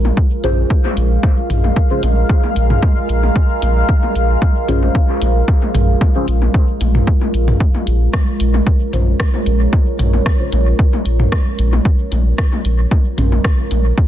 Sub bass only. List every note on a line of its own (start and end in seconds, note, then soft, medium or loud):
0.00 0.12 A#1 medium
0.44 0.65 A#1 medium
0.97 1.18 A#1 medium
1.50 1.71 A#1 loud
2.03 2.24 A#1 medium
2.56 2.77 A#1 medium
3.09 3.30 A#1 medium
3.62 3.83 A#1 loud
4.15 4.36 A#1 medium
4.68 4.90 A#1 medium
5.21 5.43 A#1 medium
5.75 5.96 A#1 loud
6.28 6.49 A#1 medium
6.81 7.02 A#1 medium
7.34 7.55 A#1 medium
7.87 8.08 A#1 loud
8.40 8.61 A#1 medium
8.93 9.14 A#1 medium
9.46 9.67 A#1 loud
9.99 10.21 A#1 loud
10.52 10.74 A#1 medium
11.06 11.27 A#1 medium
11.59 11.80 A#1 medium
12.12 12.33 A#1 loud
12.65 12.86 A#1 medium
13.18 13.39 A#1 medium
13.71 13.92 A#1 medium